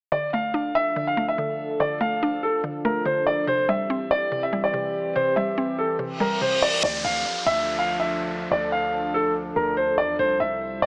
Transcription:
0.12 synth pluck D3, ambient pad F3 D4 A4, grand piano D5
0.33 synth pluck A3, grand piano F5
0.54 synth pluck D4
0.75 grand piano E5
0.96 synth pluck D3
1.07 grand piano F5
1.17 synth pluck A3
1.28 grand piano E5
1.38 synth pluck D3
1.80 synth pluck D3, grand piano D5
2.01 synth pluck A3, grand piano F5
2.23 synth pluck D4
2.43 grand piano A4
2.64 synth pluck D3
2.85 synth pluck A3, grand piano A#4
3.05 synth pluck D3, grand piano C5
3.27 grand piano D5
3.47 synth pluck C3, ambient pad E3 C4 G4, grand piano C5
3.69 synth pluck G3, grand piano E5
3.90 synth pluck C4
4.11 grand piano D5
4.32 synth pluck C3
4.43 grand piano E5
4.53 synth pluck G3
4.64 grand piano D5
4.74 synth pluck C3
5.16 synth pluck C3, grand piano C5
5.36 synth pluck G3, grand piano E5
5.58 synth pluck C4
5.78 grand piano A4
5.99 synth pluck C3, reverse cymbal
6.20 synth pluck G3, grand piano A#4
6.41 synth pluck C3, grand piano C5
6.62 grand piano D5
6.83 808-style bass D2, ambient pad F3 D4 A4, grand piano D5, downlifter
7.04 808-style bass D2, grand piano F5
7.46 808-style bass D2, grand piano E5
7.79 grand piano F5
8.00 grand piano E5
8.51 808-style bass D2, grand piano D5
8.72 grand piano F5
9.14 grand piano A4
9.56 808-style bass D2, grand piano A#4
9.77 grand piano C5
9.98 808-style bass E2, grand piano D5
10.19 808-style bass C2, ambient pad G3 E4 C5, grand piano C5
10.40 808-style bass C2, grand piano E5
10.82 808-style bass C2, grand piano D5

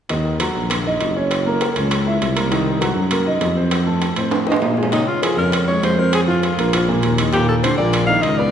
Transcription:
0.09 tuba D#2, grand piano D#3 D#4, high bongo, high timbale
0.25 high bongo
0.40 grand piano F#3 F#4, high bongo, high timbale
0.55 tuba A#1, high bongo
0.70 grand piano A#3 A#4, high bongo, high timbale
0.85 grand piano D#4 D#5, high bongo
1.00 tuba F#1, high bongo, low bongo, high timbale
1.16 grand piano C#4 C#5
1.31 high bongo, high timbale
1.46 grand piano A#3 A#4, high bongo
1.61 high bongo, high timbale
1.76 tuba C#2, grand piano C#4 C#5, high bongo, high timbale
1.91 high bongo, high timbale
2.06 grand piano E4 E5, high bongo
2.22 tuba C2, high bongo, low bongo, high timbale
2.36 grand piano A#3 A#4, high timbale
2.51 grand piano D#3 D#4, high bongo, high timbale
2.67 high bongo
2.81 grand piano F#3 F#4, high bongo, high timbale
2.96 tuba F#2, high bongo
3.11 grand piano A#3 A#4, high bongo, high timbale
3.26 grand piano D#4 D#5, high bongo
3.40 tuba F2, high bongo, low bongo, high timbale, low timbale
3.57 grand piano C4 C5
3.71 high bongo, high timbale
3.86 grand piano A3 A4, high bongo
4.01 high bongo, high timbale
4.16 tuba A2, grand piano C4 C5, high bongo, high timbale
4.31 high bongo, high timbale
4.47 grand piano D#4 D#5, high bongo
4.52 high timbale
4.56 high bongo
4.62 tuba A#2, low timbale
4.77 grand piano G#3 G#4, low bongo
4.83 low timbale
4.92 grand piano C#3 C#4, alto saxophone D#4, high bongo, high timbale
5.07 alto saxophone F4, high bongo
5.23 grand piano F3 F4, alto saxophone G#4, high bongo, high timbale
5.37 tuba F2, grand piano C#3 C#4, alto saxophone A#4, high bongo
5.52 high bongo, high timbale
5.67 grand piano G#3 G#4, alto saxophone C#5, high bongo
5.83 tuba F2, alto saxophone C5, high bongo, low bongo, high timbale, low timbale
5.98 grand piano C4 C5, alto saxophone A#4
6.13 alto saxophone G#4, high bongo, high timbale
6.28 grand piano F3 F4, alto saxophone F4, high bongo
6.43 alto saxophone F4, high bongo, high timbale
6.58 tuba A#1, grand piano A#3 A#4, high bongo, high timbale
6.73 grand piano F3 F4, high bongo, high timbale
6.88 grand piano A#2 A#3, high bongo
7.02 tuba D#2, high bongo, low bongo, high timbale
7.18 grand piano D#3 D#4, high timbale
7.33 grand piano A#2 A#3, alto saxophone G4, high bongo, high timbale
7.49 alto saxophone A4, high bongo
7.63 grand piano D3 D4, alto saxophone C5, high bongo, high timbale
7.78 tuba A#1, grand piano A#2 A#3, alto saxophone D5, high bongo
7.93 high bongo, high timbale
8.07 grand piano D#3 D#4, alto saxophone F5, high bongo
8.22 tuba C#2, alto saxophone D#5, high bongo, low bongo, high timbale
8.38 grand piano B3 B4, alto saxophone D5

